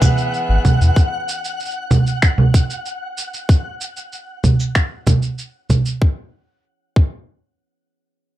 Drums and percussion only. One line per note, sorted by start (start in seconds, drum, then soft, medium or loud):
0.02 kick loud
0.02 low conga medium
0.02 shaker medium
0.18 shaker soft
0.34 shaker soft
0.65 kick medium
0.65 low conga medium
0.65 shaker medium
0.81 shaker soft
0.96 kick loud
0.96 shaker soft
1.28 shaker medium
1.44 shaker soft
1.60 shaker soft
1.65 shaker soft
1.71 shaker soft
1.91 kick medium
1.91 low conga medium
1.91 shaker medium
2.07 shaker soft
2.22 finger snap medium
2.22 kick loud
2.22 shaker soft
2.38 low conga medium
2.54 kick loud
2.54 shaker medium
2.70 shaker soft
2.86 shaker soft
3.17 shaker medium
3.34 shaker soft
3.49 kick loud
3.49 shaker soft
3.81 shaker medium
3.97 shaker soft
4.12 shaker soft
4.44 kick medium
4.44 low conga medium
4.44 shaker medium
4.60 shaker soft
4.75 finger snap medium
4.75 kick loud
4.75 shaker soft
5.07 kick loud
5.07 low conga medium
5.07 shaker medium
5.22 shaker soft
5.38 shaker soft
5.70 kick medium
5.70 low conga medium
5.70 shaker medium
5.85 shaker soft
6.02 kick loud
6.96 kick loud